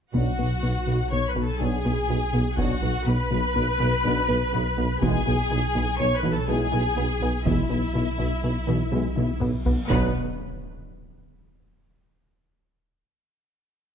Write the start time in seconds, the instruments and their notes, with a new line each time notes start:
0.13 tuba B1, sub bass B1, double bass section B1, cello section B2, trombone section B2 F#3, analog synth bass B2, french horn section B3 D4, synth arpeggio sound B3, viola section F#4, violin section F#4 F#5, taiko
0.38 tuba B1, double bass section B1, cello section B2, analog synth bass B2, synth arpeggio sound B4
0.62 tuba B1, double bass section B1, cello section B2, analog synth bass B2, synth arpeggio sound B4
0.86 tuba B1, double bass section B1, cello section B2, analog synth bass B2, synth arpeggio sound B4
1.10 tuba B1, double bass section B1, cello section B2, analog synth bass B2, violin section C#5 C#6, viola section C#5
1.27 violin section B4 B5, viola section B4
1.35 tuba B1, double bass section B1, cello section B2, analog synth bass B2, synth arpeggio sound B3
1.43 viola section A4, violin section A4 A5
1.59 tuba B1, double bass section B1, trombone section B2 F#3, cello section B2, analog synth bass B2, french horn section B3 D4, synth arpeggio sound D4, violin section G#4 G#5, viola section G#4
1.84 tuba B1, double bass section B1, cello section B2, analog synth bass B2, synth arpeggio sound B4
2.08 tuba B1, double bass section B1, cello section B2, analog synth bass B3, synth arpeggio sound F#4
2.33 tuba B1, double bass section B1, cello section B2, analog synth bass B3
2.57 tuba B1, double bass section B1, trombone section B2 F#3, cello section B2, analog synth bass B2, french horn section B3 D4, synth arpeggio sound B3, viola section F#4, violin section F#4 F#5, taiko
2.81 tuba B1, double bass section B1, cello section B2, analog synth bass B2, synth arpeggio sound B4
3.05 tuba B1, double bass section B1, cello section B2, analog synth bass B2, viola section B4, violin section B4 B5, synth arpeggio sound B4
3.31 tuba B1, double bass section B1, cello section B2, analog synth bass B2, synth arpeggio sound B4
3.55 tuba B1, double bass section B1, cello section B2, analog synth bass B2
3.79 tuba B1, double bass section B1, cello section B2, analog synth bass B2, synth arpeggio sound B3
4.03 tuba B1, double bass section B1, cello section B2, analog synth bass B2, trombone section B2 F#3, french horn section B3 D4, synth arpeggio sound D4
4.29 tuba B1, double bass section B1, cello section B2, analog synth bass B2, synth arpeggio sound B4
4.53 tuba B1, double bass section B1, cello section B2, analog synth bass B3, synth arpeggio sound F#4
4.76 tuba B1, double bass section B1, cello section B2, analog synth bass B3
5.01 tuba B1, sub bass B1, double bass section B1, analog synth bass B2, cello section B2, trombone section B2 G#3, synth arpeggio sound E3, french horn section B3 E4, viola section G#4, violin section G#4 G#5, taiko
5.26 tuba B1, double bass section B1, cello section B2, analog synth bass B2, synth arpeggio sound E4
5.51 tuba B1, double bass section B1, cello section B2, analog synth bass B2, synth arpeggio sound E4
5.75 tuba B1, double bass section B1, cello section B2, analog synth bass B2, synth arpeggio sound E4
5.99 tuba B1, double bass section B1, analog synth bass B2, cello section B2, viola section C#5, violin section C#5 C#6
6.15 violin section B4 B5, viola section B4
6.23 tuba B1, double bass section B1, cello section B2, analog synth bass B2, synth arpeggio sound E3
6.31 viola section A4, violin section A4 A5
6.47 tuba B1, double bass section B1, cello section B2, analog synth bass B2, trombone section B2 G#3, synth arpeggio sound G#3, french horn section B3 E4, viola section G#4, violin section G#4 G#5
6.72 tuba B1, double bass section B1, cello section B2, analog synth bass B2, synth arpeggio sound E4
6.96 tuba B1, double bass section B1, cello section B2, synth arpeggio sound B3, analog synth bass B3
7.20 tuba B1, double bass section B1, cello section B2, analog synth bass B3
7.45 tuba B1, double bass section B1, cello section B2, analog synth bass B2, trombone section B2 G#3, synth arpeggio sound E3, french horn section B3 E4, viola section E4, violin section E4 E5, taiko, reverse cymbal
7.69 tuba B1, double bass section B1, cello section B2, analog synth bass B2, synth arpeggio sound E4
7.93 tuba B1, double bass section B1, cello section B2, analog synth bass B2, synth arpeggio sound E4
8.18 tuba B1, double bass section B1, cello section B2, analog synth bass B2, synth arpeggio sound E4
8.43 tuba B1, double bass section B1, analog synth bass B2, cello section B2
8.67 tuba B1, double bass section B1, cello section B2, analog synth bass B2, synth arpeggio sound E3
8.92 tuba B1, double bass section B1, trombone section B2 G#3, analog synth bass B2, cello section B2, synth arpeggio sound G#3, french horn section B3 E4
9.16 tuba B1, double bass section B1, cello section B2, analog synth bass B2, synth arpeggio sound E4, taiko high
9.40 tuba B1, double bass section B1, cello section B2, synth arpeggio sound B3, analog synth bass B3, taiko mid
9.65 tuba B1, double bass section B1, cello section B2, analog synth bass B3, taiko low
9.89 tuba B1, double bass section B1, sub bass B1, cello section B2, trombone section B2 F#3, french horn section B3 D4, violin section B3 B4, viola section B4, taiko, impact